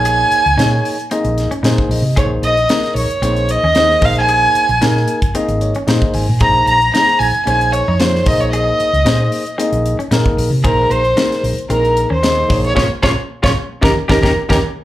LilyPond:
<<
  \new Staff \with { instrumentName = "Flute" } { \time 4/4 \key ees \dorian \tempo 4 = 113 aes'''4.~ aes'''16 r2 r16 | des'''8 ees'''4 des'''4 ees'''4 f'''16 aes'''16~ | aes'''4.~ aes'''16 r2 r16 | bes'''8 bes'''8 bes'''8 aes'''8 aes'''8 des'''8 c'''8 ees'''16 des'''16 |
ees'''2 r2 | bes''8 c'''4 r8 bes''8. c'''4 des'''16 | des'''16 r16 des'''16 r8 des'''16 r8 bes''16 r16 bes''16 bes''16 r16 bes''16 r8 | }
  \new Staff \with { instrumentName = "Violin" } { \time 4/4 \key ees \dorian aes''4.~ aes''16 r2 r16 | des''8 ees''4 des''4 ees''4 f''16 aes''16~ | aes''4.~ aes''16 r2 r16 | bes''8 bes''8 bes''8 aes''8 aes''8 des''8 c''8 ees''16 des''16 |
ees''2 r2 | bes'8 c''4 r8 bes'8. c''4 des''16 | des''16 r16 des''16 r8 des''16 r8 bes'16 r16 bes'16 bes'16 r16 bes'16 r8 | }
  \new Staff \with { instrumentName = "Tine electric piano" } { \time 4/4 \key ees \dorian <bes ees' aes' des''>8 r8 <bes ees' aes' des''>8 r8 <bes ees' aes' ees''>8 r8 <bes ees' aes' c'' aes''>8 ees''8 | <bes ees' aes' c''>8 r8 <bes ees' aes' bes'>8 r8 <bes ees' aes' c''>8 r8 <bes ees' aes' c''>8 <bes ees' aes' c''>8~ | <bes ees' aes' c''>8 r8 <bes ees' aes' bes'>8 r8 <bes ees' aes' ees''>8 des''8 <bes ees' aes' c'' ees''>8 aes''8 | <bes ees' aes' c''>8 r8 <bes ees' aes' c''>8 r8 <bes ees' aes' c''>8 r8 <bes ees' aes' des''>8 <bes ees' aes' c''>8~ |
<bes ees' aes' c''>8 r8 <bes ees' aes' c''>8 r8 <bes ees' aes' ees''>8 r8 <bes ees' aes' bes'>8 r8 | <bes ees' aes' c''>8 r8 <bes ees' aes' bes'>8 r8 <bes ees' aes' bes'>8 r8 <bes ees' aes' ees''>8 <bes ees' aes' des''>8 | <des' f' aes'>16 r16 <des' f' aes'>16 r8 <des' f' aes'>16 r8 <des' ees' g'>16 r16 <des' ees' g'>16 <des' ees' g'>16 r16 <des' ees' g'>16 r8 | }
  \new Staff \with { instrumentName = "Clean electric guitar" } { \time 4/4 \key ees \dorian aes'8 r8 ees'8 r8 c'8 r16 des'16 ees'8 r8 | aes'8 r8 ees'8 r8 c'8 r16 des'16 ees'8 r8 | aes'8 r8 ees'8 r8 c'8 r16 des'16 ees'8 r8 | aes'8 r8 ees'8 r8 des'8 r16 ees'16 f'8 r8 |
aes'8 r8 ees'8 r8 c'8 r16 des'16 ees'8 r8 | aes'8 r8 ees'8 r8 c'8 r16 des'16 ees'8 r8 | <bes des' f'>16 r16 <bes des' f'>16 r8 <bes des' f'>16 r8 <des' ees' g'>16 r16 <des' ees' g'>16 <des' ees' g'>16 r16 <des' ees' g'>16 r8 | }
  \new Staff \with { instrumentName = "Fingered electric bass" } { \clef bass \time 4/4 \key ees \dorian bes,,8 r16 des,16 bes,8 r8. bes,,8 r16 bes,16 r16 bes,,16 c16 | bes,,8 bes,,8 r8 bes,,16 r16 bes,,8. ees,8. bes,,8~ | bes,,8 r16 bes,,16 bes,8 r8. aes,,8 r16 bes,16 r16 aes,,16 bes,16 | bes,,8 bes,,8 r8 bes,,16 r16 bes,,8. f,8. bes,,8~ |
bes,,8 r16 des,16 bes,8 r8. bes,,8 r16 bes,16 r16 bes,,16 c16 | bes,,8 bes,,8 r8 bes,,16 r16 bes,,8. ees,8. bes,,8 | bes,,16 r16 bes,,16 r8 bes,,16 r8 ees,16 r16 ees,16 ees,16 r16 ees,16 r8 | }
  \new DrumStaff \with { instrumentName = "Drums" } \drummode { \time 4/4 hh8 hh16 hh16 <hh sn>8 hho16 hh16 hh16 hh16 <hh sn>16 hh16 <hh sn>16 bd16 hho8 | <hh bd>8 hh16 hh16 <hh sn>16 <hh sn>16 hho16 hh16 hh16 hh16 hh8 <hh sn>16 sn16 <hho bd>16 hh16 | hh8 hh16 hh16 <hh sn>16 sn16 hh16 <hh bd>16 hh16 hh16 hh16 hh16 <hh sn>16 bd16 hho8 | <hh bd>8 hh16 hh16 <hh sn>16 hh16 hho16 hh16 hh16 hh16 hh8 <hh sn>16 sn16 <hho bd>16 hh16 |
hh8 hh16 hh16 <hh sn>8 hho16 hh16 hh16 hh16 hh16 hh16 <hh sn>16 bd16 hho8 | <hh bd>8 hh16 hh16 <hh sn>16 <hh sn>16 hho16 hh16 hh16 hh16 hh8 <hh sn>8 <hho bd>16 hh16 | <bd sn>8 <bd sn>8 r16 <bd sn>8. <bd sn>8 <bd sn>16 <bd sn>16 r16 <bd sn>8. | }
>>